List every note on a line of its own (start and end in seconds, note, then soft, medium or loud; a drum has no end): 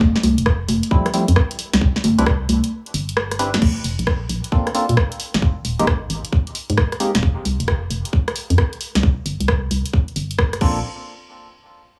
0.01 0.12 F1 loud
0.01 kick loud
0.16 snare soft
0.23 0.35 C2 medium
0.23 open hi-hat loud
0.23 high conga medium
0.38 0.66 F1 medium
0.38 closed hi-hat medium
0.46 kick loud
0.46 cross-stick loud
0.68 0.80 F1 medium
0.68 open hi-hat medium
0.68 high conga medium
0.83 closed hi-hat medium
0.91 1.08 F3 medium
0.91 1.08 G3 medium
0.91 1.08 A3 medium
0.91 1.08 C4 medium
0.91 1.08 E4 medium
0.91 kick loud
1.06 cross-stick medium
1.06 closed hi-hat soft
1.14 1.25 F3 medium
1.14 1.25 G3 medium
1.14 1.25 A3 medium
1.14 1.25 C4 medium
1.14 1.25 E4 loud
1.14 open hi-hat loud
1.28 1.35 F2 loud
1.28 closed hi-hat medium
1.36 kick loud
1.36 cross-stick loud
1.51 closed hi-hat medium
1.59 open hi-hat loud
1.73 1.80 C2 medium
1.73 snare medium
1.73 closed hi-hat medium
1.81 1.93 C2 loud
1.81 kick loud
1.96 snare soft
2.04 2.15 G1 medium
2.04 open hi-hat loud
2.04 high conga medium
2.18 2.46 C2 medium
2.18 2.25 C4 loud
2.18 2.25 D4 medium
2.18 2.25 E4 medium
2.18 2.25 G4 medium
2.18 2.25 B4 loud
2.18 closed hi-hat medium
2.26 kick loud
2.26 cross-stick loud
2.49 2.61 C2 medium
2.49 open hi-hat loud
2.49 high conga medium
2.64 closed hi-hat medium
2.86 closed hi-hat soft
2.94 3.59 G1 medium
2.94 open hi-hat loud
3.09 closed hi-hat medium
3.17 cross-stick loud
3.31 cross-stick medium
3.31 closed hi-hat medium
3.39 3.51 C4 medium
3.39 3.51 D4 medium
3.39 3.51 E4 medium
3.39 3.51 G4 medium
3.39 3.51 B4 medium
3.39 open hi-hat loud
3.54 snare medium
3.54 closed hi-hat medium
3.54 high conga medium
3.62 3.73 A#1 loud
3.62 kick loud
3.62 crash loud
3.84 3.96 F1 medium
3.84 open hi-hat loud
3.99 4.27 A#1 medium
3.99 closed hi-hat medium
4.07 kick loud
4.07 cross-stick loud
4.29 4.41 A#1 medium
4.29 open hi-hat medium
4.44 closed hi-hat medium
4.52 4.69 A#3 medium
4.52 4.69 C4 medium
4.52 4.69 D4 medium
4.52 4.69 F4 medium
4.52 4.69 A4 medium
4.52 kick loud
4.67 cross-stick medium
4.67 closed hi-hat soft
4.74 4.86 A#3 medium
4.74 4.86 C4 medium
4.74 4.86 D4 medium
4.74 4.86 F4 medium
4.74 4.86 A4 medium
4.74 open hi-hat loud
4.89 4.95 A#2 loud
4.89 closed hi-hat medium
4.97 kick loud
4.97 cross-stick loud
5.12 closed hi-hat medium
5.20 open hi-hat loud
5.34 5.41 G#1 medium
5.34 snare medium
5.34 closed hi-hat medium
5.42 5.54 G#1 loud
5.42 kick loud
5.65 5.76 D#1 medium
5.65 open hi-hat loud
5.79 6.07 G#1 medium
5.79 5.86 G#3 medium
5.79 5.86 A#3 medium
5.79 5.86 C4 medium
5.79 5.86 D#4 medium
5.79 5.86 G4 loud
5.79 closed hi-hat medium
5.87 kick loud
5.87 cross-stick loud
6.10 6.21 G#1 medium
6.10 open hi-hat medium
6.25 closed hi-hat medium
6.33 kick loud
6.47 closed hi-hat soft
6.55 open hi-hat loud
6.70 6.76 G#2 loud
6.70 closed hi-hat medium
6.78 kick loud
6.78 cross-stick loud
6.92 cross-stick medium
6.92 closed hi-hat soft
7.00 7.12 G#3 medium
7.00 7.12 A#3 medium
7.00 7.12 C4 medium
7.00 7.12 D#4 medium
7.00 7.12 G4 medium
7.00 open hi-hat loud
7.15 7.21 D#1 medium
7.15 snare medium
7.15 closed hi-hat medium
7.23 7.34 F1 loud
7.23 kick loud
7.45 7.57 C2 medium
7.45 open hi-hat loud
7.60 7.88 F1 medium
7.60 closed hi-hat medium
7.68 kick loud
7.68 cross-stick loud
7.90 8.02 F1 medium
7.90 open hi-hat medium
8.05 closed hi-hat medium
8.13 kick loud
8.28 cross-stick medium
8.28 closed hi-hat soft
8.36 open hi-hat loud
8.50 8.56 F2 loud
8.50 closed hi-hat medium
8.58 kick loud
8.58 cross-stick loud
8.73 closed hi-hat soft
8.81 open hi-hat medium
8.95 9.01 C2 medium
8.95 snare medium
8.95 closed hi-hat medium
9.03 9.15 C2 loud
9.03 kick loud
9.26 9.37 G1 medium
9.26 open hi-hat loud
9.40 9.68 C2 medium
9.40 closed hi-hat medium
9.48 kick loud
9.48 cross-stick loud
9.71 9.82 C2 medium
9.71 open hi-hat medium
9.86 closed hi-hat medium
9.93 kick loud
10.08 closed hi-hat soft
10.16 10.60 G1 medium
10.16 open hi-hat loud
10.31 closed hi-hat medium
10.39 kick loud
10.39 cross-stick loud
10.53 cross-stick medium
10.53 closed hi-hat soft
10.61 10.82 A#1 medium
10.61 10.79 A#3 medium
10.61 10.79 C4 medium
10.61 10.79 D4 medium
10.61 10.79 F4 medium
10.61 10.79 A4 medium
10.61 kick loud
10.61 crash medium